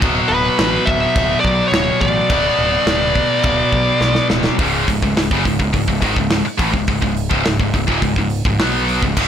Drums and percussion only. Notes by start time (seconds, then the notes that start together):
0.02 kick, crash
0.59 snare, crash
0.87 kick
1.16 kick, crash
1.45 kick
1.73 snare, crash
2.01 kick
2.30 kick, crash
2.87 snare, crash
3.15 kick
3.43 kick, crash
3.72 kick
4.01 snare
4.15 snare
4.30 snare
4.44 snare
4.59 kick, open hi-hat
4.88 kick, open hi-hat
5.02 kick
5.17 snare, open hi-hat
5.31 kick
5.45 kick, open hi-hat
5.60 kick
5.74 kick, open hi-hat
5.88 kick
6.02 kick, open hi-hat
6.16 kick
6.30 snare, open hi-hat
6.59 kick, open hi-hat
6.74 kick
6.87 kick, open hi-hat
7.02 kick
7.16 open hi-hat
7.31 kick
7.45 snare, open hi-hat
7.60 kick
7.74 kick, open hi-hat
7.88 kick
8.02 kick, open hi-hat
8.16 kick
8.30 open hi-hat
8.45 kick
8.59 snare, open hi-hat
8.89 open hi-hat
9.02 kick
9.17 kick, crash